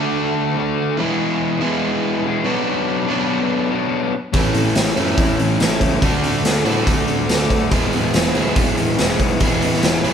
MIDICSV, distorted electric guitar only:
0, 0, Header, 1, 2, 480
1, 0, Start_track
1, 0, Tempo, 421348
1, 1115, Time_signature, 4, 2, 24, 8
1, 11544, End_track
2, 0, Start_track
2, 0, Title_t, "Distorted electric guitar"
2, 0, Program_c, 0, 30
2, 0, Note_on_c, 0, 50, 68
2, 0, Note_on_c, 0, 57, 65
2, 0, Note_on_c, 0, 62, 76
2, 0, Note_on_c, 0, 66, 78
2, 618, Note_off_c, 0, 50, 0
2, 618, Note_off_c, 0, 66, 0
2, 629, Note_off_c, 0, 62, 0
2, 632, Note_on_c, 0, 50, 65
2, 635, Note_off_c, 0, 57, 0
2, 647, Note_on_c, 0, 57, 59
2, 662, Note_on_c, 0, 62, 64
2, 676, Note_on_c, 0, 66, 78
2, 1099, Note_off_c, 0, 50, 0
2, 1107, Note_off_c, 0, 57, 0
2, 1110, Note_on_c, 0, 40, 80
2, 1115, Note_off_c, 0, 62, 0
2, 1119, Note_on_c, 0, 47, 83
2, 1122, Note_off_c, 0, 66, 0
2, 1131, Note_on_c, 0, 52, 85
2, 1140, Note_on_c, 0, 56, 83
2, 1150, Note_on_c, 0, 59, 89
2, 1156, Note_on_c, 0, 68, 92
2, 1803, Note_off_c, 0, 68, 0
2, 1817, Note_on_c, 0, 68, 76
2, 1818, Note_off_c, 0, 40, 0
2, 1820, Note_off_c, 0, 59, 0
2, 1823, Note_off_c, 0, 47, 0
2, 1825, Note_off_c, 0, 56, 0
2, 1825, Note_on_c, 0, 59, 66
2, 1828, Note_off_c, 0, 52, 0
2, 1839, Note_on_c, 0, 56, 78
2, 1846, Note_on_c, 0, 52, 68
2, 1853, Note_on_c, 0, 47, 65
2, 1861, Note_on_c, 0, 40, 60
2, 2526, Note_off_c, 0, 40, 0
2, 2531, Note_off_c, 0, 68, 0
2, 2533, Note_off_c, 0, 47, 0
2, 2535, Note_off_c, 0, 59, 0
2, 2540, Note_on_c, 0, 40, 59
2, 2542, Note_off_c, 0, 56, 0
2, 2546, Note_off_c, 0, 52, 0
2, 2547, Note_on_c, 0, 47, 75
2, 2560, Note_on_c, 0, 52, 70
2, 2564, Note_on_c, 0, 56, 70
2, 2578, Note_on_c, 0, 59, 67
2, 2585, Note_on_c, 0, 68, 80
2, 2757, Note_off_c, 0, 47, 0
2, 2771, Note_on_c, 0, 47, 90
2, 2772, Note_off_c, 0, 40, 0
2, 2779, Note_off_c, 0, 52, 0
2, 2783, Note_off_c, 0, 59, 0
2, 2783, Note_on_c, 0, 54, 84
2, 2785, Note_off_c, 0, 56, 0
2, 2795, Note_off_c, 0, 68, 0
2, 2796, Note_on_c, 0, 59, 82
2, 2802, Note_on_c, 0, 62, 83
2, 2812, Note_on_c, 0, 66, 82
2, 3476, Note_off_c, 0, 47, 0
2, 3487, Note_off_c, 0, 54, 0
2, 3490, Note_on_c, 0, 47, 66
2, 3500, Note_off_c, 0, 59, 0
2, 3501, Note_on_c, 0, 54, 65
2, 3503, Note_off_c, 0, 62, 0
2, 3508, Note_off_c, 0, 66, 0
2, 3512, Note_on_c, 0, 59, 69
2, 3526, Note_on_c, 0, 62, 66
2, 3534, Note_on_c, 0, 66, 75
2, 4198, Note_off_c, 0, 66, 0
2, 4207, Note_off_c, 0, 47, 0
2, 4208, Note_off_c, 0, 62, 0
2, 4212, Note_off_c, 0, 54, 0
2, 4212, Note_on_c, 0, 66, 76
2, 4218, Note_off_c, 0, 59, 0
2, 4221, Note_on_c, 0, 62, 71
2, 4233, Note_on_c, 0, 59, 65
2, 4243, Note_on_c, 0, 54, 61
2, 4255, Note_on_c, 0, 47, 58
2, 4688, Note_off_c, 0, 66, 0
2, 4692, Note_off_c, 0, 62, 0
2, 4698, Note_off_c, 0, 59, 0
2, 4703, Note_off_c, 0, 54, 0
2, 4709, Note_off_c, 0, 47, 0
2, 4927, Note_on_c, 0, 45, 74
2, 4940, Note_on_c, 0, 52, 77
2, 4950, Note_on_c, 0, 57, 80
2, 4962, Note_on_c, 0, 61, 81
2, 4972, Note_on_c, 0, 64, 81
2, 5629, Note_off_c, 0, 64, 0
2, 5642, Note_off_c, 0, 61, 0
2, 5643, Note_on_c, 0, 64, 76
2, 5645, Note_off_c, 0, 45, 0
2, 5651, Note_off_c, 0, 52, 0
2, 5656, Note_on_c, 0, 61, 77
2, 5664, Note_off_c, 0, 57, 0
2, 5669, Note_on_c, 0, 57, 72
2, 5677, Note_on_c, 0, 52, 72
2, 5691, Note_on_c, 0, 45, 70
2, 6344, Note_off_c, 0, 45, 0
2, 6355, Note_off_c, 0, 52, 0
2, 6357, Note_on_c, 0, 45, 59
2, 6363, Note_off_c, 0, 64, 0
2, 6369, Note_off_c, 0, 57, 0
2, 6369, Note_off_c, 0, 61, 0
2, 6369, Note_on_c, 0, 52, 69
2, 6382, Note_on_c, 0, 57, 62
2, 6391, Note_on_c, 0, 61, 74
2, 6401, Note_on_c, 0, 64, 68
2, 6838, Note_off_c, 0, 52, 0
2, 6840, Note_off_c, 0, 45, 0
2, 6843, Note_on_c, 0, 50, 83
2, 6849, Note_off_c, 0, 57, 0
2, 6857, Note_off_c, 0, 61, 0
2, 6862, Note_off_c, 0, 64, 0
2, 6863, Note_on_c, 0, 57, 76
2, 6876, Note_on_c, 0, 62, 87
2, 6888, Note_on_c, 0, 66, 86
2, 7552, Note_off_c, 0, 66, 0
2, 7563, Note_off_c, 0, 50, 0
2, 7565, Note_off_c, 0, 62, 0
2, 7565, Note_on_c, 0, 66, 79
2, 7573, Note_off_c, 0, 57, 0
2, 7578, Note_on_c, 0, 62, 69
2, 7593, Note_on_c, 0, 57, 69
2, 7605, Note_on_c, 0, 50, 70
2, 8273, Note_off_c, 0, 50, 0
2, 8285, Note_off_c, 0, 66, 0
2, 8286, Note_on_c, 0, 50, 71
2, 8288, Note_off_c, 0, 57, 0
2, 8291, Note_off_c, 0, 62, 0
2, 8302, Note_on_c, 0, 57, 66
2, 8314, Note_on_c, 0, 62, 62
2, 8333, Note_on_c, 0, 66, 70
2, 8765, Note_off_c, 0, 50, 0
2, 8773, Note_off_c, 0, 57, 0
2, 8773, Note_on_c, 0, 40, 87
2, 8779, Note_off_c, 0, 62, 0
2, 8782, Note_on_c, 0, 47, 84
2, 8789, Note_off_c, 0, 66, 0
2, 8790, Note_on_c, 0, 52, 91
2, 8800, Note_on_c, 0, 56, 90
2, 8806, Note_on_c, 0, 59, 83
2, 8818, Note_on_c, 0, 68, 101
2, 9490, Note_off_c, 0, 68, 0
2, 9494, Note_off_c, 0, 47, 0
2, 9495, Note_on_c, 0, 68, 69
2, 9500, Note_off_c, 0, 59, 0
2, 9505, Note_on_c, 0, 59, 74
2, 9510, Note_off_c, 0, 56, 0
2, 9515, Note_on_c, 0, 56, 67
2, 9519, Note_off_c, 0, 52, 0
2, 9523, Note_on_c, 0, 52, 62
2, 9532, Note_off_c, 0, 40, 0
2, 9533, Note_on_c, 0, 47, 74
2, 9536, Note_on_c, 0, 40, 64
2, 10199, Note_off_c, 0, 40, 0
2, 10210, Note_off_c, 0, 47, 0
2, 10211, Note_off_c, 0, 68, 0
2, 10213, Note_on_c, 0, 40, 67
2, 10216, Note_off_c, 0, 59, 0
2, 10220, Note_off_c, 0, 52, 0
2, 10221, Note_off_c, 0, 56, 0
2, 10224, Note_on_c, 0, 47, 57
2, 10234, Note_on_c, 0, 52, 76
2, 10247, Note_on_c, 0, 56, 72
2, 10253, Note_on_c, 0, 59, 71
2, 10257, Note_on_c, 0, 68, 67
2, 10691, Note_off_c, 0, 40, 0
2, 10696, Note_off_c, 0, 47, 0
2, 10701, Note_off_c, 0, 52, 0
2, 10704, Note_on_c, 0, 40, 83
2, 10708, Note_off_c, 0, 56, 0
2, 10711, Note_off_c, 0, 59, 0
2, 10713, Note_off_c, 0, 68, 0
2, 10715, Note_on_c, 0, 47, 75
2, 10725, Note_on_c, 0, 52, 81
2, 10736, Note_on_c, 0, 56, 92
2, 10742, Note_on_c, 0, 59, 93
2, 10748, Note_on_c, 0, 68, 87
2, 11413, Note_off_c, 0, 68, 0
2, 11418, Note_off_c, 0, 40, 0
2, 11418, Note_off_c, 0, 59, 0
2, 11423, Note_off_c, 0, 47, 0
2, 11426, Note_on_c, 0, 68, 83
2, 11428, Note_off_c, 0, 52, 0
2, 11431, Note_off_c, 0, 56, 0
2, 11432, Note_on_c, 0, 59, 79
2, 11444, Note_on_c, 0, 56, 72
2, 11456, Note_on_c, 0, 52, 70
2, 11459, Note_on_c, 0, 47, 61
2, 11466, Note_on_c, 0, 40, 67
2, 11544, Note_off_c, 0, 40, 0
2, 11544, Note_off_c, 0, 47, 0
2, 11544, Note_off_c, 0, 52, 0
2, 11544, Note_off_c, 0, 56, 0
2, 11544, Note_off_c, 0, 59, 0
2, 11544, Note_off_c, 0, 68, 0
2, 11544, End_track
0, 0, End_of_file